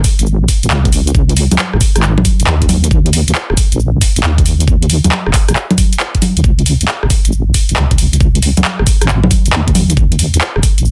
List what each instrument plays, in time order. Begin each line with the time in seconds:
0.04 kick, open hi-hat, shaker
0.19 wobble bass G#1, closed hi-hat, shaker
0.26 shaker
0.41 wobble bass B1
0.48 kick, open hi-hat, shaker
0.63 wobble bass G#1, closed hi-hat, shaker
0.70 wobble bass C#2, clap, shaker
0.85 kick, closed hi-hat
0.93 open hi-hat, shaker
1.07 closed hi-hat, shaker
1.15 wobble bass C#2, kick, shaker
1.29 closed hi-hat
1.37 open hi-hat, shaker
1.51 wobble bass C#2, closed hi-hat, high conga, shaker
1.59 clap, shaker
1.73 wobble bass G#1, cross-stick
1.81 kick, open hi-hat, shaker
1.96 wobble bass G#1, cross-stick, closed hi-hat, shaker
2.03 clap, shaker
2.17 wobble bass B1, high conga
2.25 kick, open hi-hat, shaker
2.40 wobble bass G#1, closed hi-hat, shaker
2.47 wobble bass D#2, clap, shaker
2.62 kick, closed hi-hat
2.69 open hi-hat, high conga, shaker
2.84 closed hi-hat, shaker
2.91 wobble bass D#2, kick, shaker
3.06 closed hi-hat
3.13 open hi-hat, shaker
3.28 wobble bass D#2, closed hi-hat, shaker
3.35 clap, shaker
3.50 wobble bass D#1, cross-stick
3.57 kick, open hi-hat, shaker
3.72 wobble bass A#1, closed hi-hat, shaker
3.79 shaker
3.94 wobble bass C#2
4.01 kick, open hi-hat, shaker
4.16 wobble bass A#1, closed hi-hat, shaker
4.23 wobble bass D#2, clap, shaker
4.38 kick, closed hi-hat
4.46 open hi-hat, shaker
4.60 closed hi-hat, shaker
4.68 wobble bass D#2, kick, shaker
4.82 closed hi-hat
4.90 open hi-hat, shaker
5.04 wobble bass D#2, closed hi-hat, high conga, shaker
5.12 clap, shaker
5.26 wobble bass D#1, cross-stick
5.34 kick, clap, open hi-hat, shaker
5.49 wobble bass A#1, cross-stick, closed hi-hat, shaker
5.56 clap, shaker
5.71 closed hi-hat, high conga
5.78 kick, open hi-hat, shaker
5.93 closed hi-hat, shaker
6.00 clap, shaker
6.15 kick, closed hi-hat
6.22 open hi-hat, high conga, shaker
6.37 wobble bass D#2, closed hi-hat, shaker
6.44 wobble bass C#2, kick, shaker
6.59 closed hi-hat
6.66 open hi-hat, shaker
6.81 wobble bass C#2, closed hi-hat, shaker
6.88 clap, shaker
7.03 wobble bass G#1, cross-stick
7.10 kick, open hi-hat, shaker
7.25 wobble bass G#1, closed hi-hat, shaker
7.32 shaker
7.47 wobble bass B1
7.54 kick, open hi-hat, shaker
7.69 wobble bass G#1, closed hi-hat, shaker
7.76 wobble bass C#2, clap, shaker
7.91 kick, closed hi-hat
7.98 open hi-hat, shaker
8.13 closed hi-hat, shaker
8.20 wobble bass C#2, kick, shaker
8.35 closed hi-hat
8.42 open hi-hat, shaker
8.57 wobble bass C#2, closed hi-hat, high conga, shaker
8.65 clap, shaker
8.79 wobble bass G#1, cross-stick
8.87 kick, open hi-hat, shaker
9.01 wobble bass G#1, cross-stick, closed hi-hat, shaker
9.09 clap, shaker
9.23 wobble bass B1, high conga
9.31 kick, open hi-hat, shaker
9.45 wobble bass G#1, closed hi-hat, shaker
9.53 wobble bass D#2, clap, shaker
9.68 kick, closed hi-hat
9.75 open hi-hat, high conga, shaker
9.90 closed hi-hat, shaker
9.97 wobble bass D#2, kick, shaker
10.12 closed hi-hat
10.19 open hi-hat, shaker
10.34 wobble bass D#2, closed hi-hat, shaker
10.41 clap, shaker
10.56 wobble bass D#1, cross-stick
10.63 kick, open hi-hat, shaker
10.78 wobble bass A#1, closed hi-hat, shaker
10.85 shaker